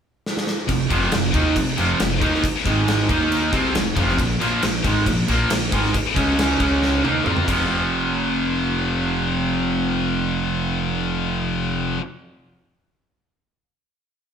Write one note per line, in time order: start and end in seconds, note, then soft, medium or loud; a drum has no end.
0.26 snare medium
0.37 snare medium
0.47 snare medium
0.68 0.89 F1 medium
0.68 0.86 F2 medium
0.68 0.86 C3 medium
0.68 kick medium
0.68 crash medium
0.90 1.11 F1 medium
0.90 1.11 F2 medium
0.90 1.11 C3 loud
0.90 1.12 F3 medium
0.90 kick loud
0.90 crash medium
1.12 1.33 F1 medium
1.12 1.30 F2 medium
1.12 1.30 C3 medium
1.12 snare loud
1.12 crash medium
1.34 1.55 D#2 medium
1.34 1.56 D#3 medium
1.34 1.56 A#3 medium
1.34 1.56 D#4 loud
1.34 kick loud
1.34 crash medium
1.56 1.74 F2 medium
1.56 1.74 C3 medium
1.56 kick medium
1.56 crash medium
1.78 1.98 F1 loud
1.78 1.99 F2 medium
1.78 2.00 C3 medium
1.78 2.00 F3 loud
1.78 crash medium
1.99 2.20 F1 medium
1.99 2.18 F2 medium
1.99 2.18 C3 medium
1.99 snare loud
1.99 crash medium
2.22 2.42 D#2 medium
2.22 2.43 D#3 medium
2.22 2.43 A#3 medium
2.22 2.44 D#4 medium
2.22 kick loud
2.22 crash medium
2.34 snare soft
2.44 muted upright bass stroke soft
2.44 muted distorted electric guitar stroke medium
2.44 kick loud
2.44 crash medium
2.66 3.06 G#1 loud
2.66 3.09 G#2 medium
2.66 3.08 D#3 medium
2.66 3.09 G#3 loud
2.66 kick loud
2.66 crash medium
2.88 snare loud
2.88 crash medium
3.09 3.50 D#2 loud
3.09 3.52 D#3 medium
3.09 3.52 A#3 loud
3.09 3.53 D#4 loud
3.09 kick loud
3.09 crash medium
3.32 crash medium
3.53 3.73 C2 medium
3.53 3.74 C3 medium
3.53 3.75 G3 loud
3.53 3.75 C4 loud
3.53 kick loud
3.53 crash medium
3.74 3.95 F1 medium
3.74 3.93 F2 medium
3.74 3.93 C3 medium
3.74 snare loud
3.74 crash medium
3.96 4.17 F1 medium
3.96 4.17 F2 medium
3.96 4.18 C3 loud
3.96 4.17 F3 medium
3.96 kick loud
3.96 crash medium
4.09 snare soft
4.18 4.39 A#1 medium
4.18 4.36 A#2 medium
4.18 4.36 F3 medium
4.18 kick medium
4.18 crash medium
4.40 4.61 A#1 loud
4.40 4.62 A#2 medium
4.40 4.62 F3 loud
4.40 4.62 A#3 loud
4.40 crash medium
4.62 4.83 A#1 medium
4.62 4.80 A#2 medium
4.62 4.81 F3 medium
4.62 snare loud
4.62 crash medium
4.84 5.05 G#1 loud
4.84 5.06 G#2 medium
4.84 5.06 D#3 loud
4.84 5.06 G#3 loud
4.84 kick loud
4.84 crash medium
5.06 5.27 A#1 medium
5.06 5.25 A#2 medium
5.06 5.25 F3 medium
5.06 kick medium
5.06 crash medium
5.28 5.49 A#1 loud
5.28 5.50 A#2 loud
5.28 5.51 F3 loud
5.28 5.51 A#3 loud
5.28 crash medium
5.50 5.71 A#1 medium
5.50 5.68 A#2 medium
5.50 5.69 F3 medium
5.50 snare loud
5.50 crash medium
5.72 5.93 G#1 medium
5.72 5.94 G#2 medium
5.72 5.94 D#3 loud
5.72 5.94 G#3 loud
5.72 kick loud
5.72 crash medium
5.84 snare soft
5.94 muted upright bass stroke soft
5.94 muted distorted electric guitar stroke medium
5.94 kick loud
5.94 crash medium
6.16 6.57 C#2 loud
6.16 6.57 C#3 medium
6.16 6.58 G#3 medium
6.16 6.58 C#4 medium
6.16 kick loud
6.16 crash medium
6.39 snare loud
6.39 crash medium
6.59 7.01 C#2 medium
6.59 7.03 C#3 medium
6.59 7.03 G#3 medium
6.59 7.03 C#4 loud
6.59 kick loud
6.59 crash medium
6.83 snare medium
7.03 7.24 D#2 loud
7.03 7.25 D#3 medium
7.03 7.26 A#3 medium
7.03 7.26 D#4 loud
7.03 high tom medium
7.25 7.46 F2 medium
7.25 7.47 F3 medium
7.25 7.48 C4 medium
7.25 7.48 F4 medium
7.25 mid tom medium
7.37 mid tom medium
7.46 11.95 F1 medium
7.46 11.97 F2 medium
7.46 12.00 C3 loud
7.46 12.01 F3 medium
7.46 kick loud
7.46 crash medium